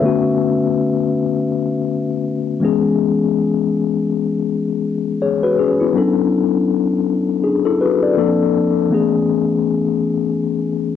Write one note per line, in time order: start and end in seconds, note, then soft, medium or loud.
0.00 2.57 D3 medium
0.00 2.58 A3 medium
0.00 2.58 B3 medium
0.00 0.23 B4 medium
0.00 0.22 E5 medium
0.05 2.59 C#4 medium
0.05 2.59 F#4 medium
2.60 5.53 E3 medium
2.60 5.54 G#3 medium
2.60 5.17 B3 medium
2.60 5.18 C#4 medium
2.65 5.18 G#4 medium
5.22 5.42 G#4 soft
5.22 5.42 C#5 medium
5.43 5.58 F#4 medium
5.43 5.57 B4 medium
5.59 5.79 C#4 medium
5.59 5.79 G#4 medium
5.80 5.93 B3 medium
5.80 6.15 E4 medium
5.94 8.12 F#3 medium
5.94 8.13 B3 medium
5.94 7.40 C#4 medium
5.94 7.41 D4 medium
5.98 7.42 A4 medium
7.44 7.64 D4 soft
7.44 7.64 G#4 medium
7.65 7.80 E4 medium
7.65 7.80 A4 medium
7.81 8.01 F#4 medium
7.81 8.01 B4 medium
8.03 8.18 A4 medium
8.03 8.37 D5 medium
8.17 8.91 F3 medium
8.17 8.91 A#3 medium
8.17 8.92 C4 medium
8.17 8.92 D4 medium
8.17 8.92 A4 medium
8.90 10.96 E3 medium
8.90 10.96 A3 medium
8.90 10.96 B3 medium
8.90 10.96 C#4 medium
8.94 10.96 G#4 medium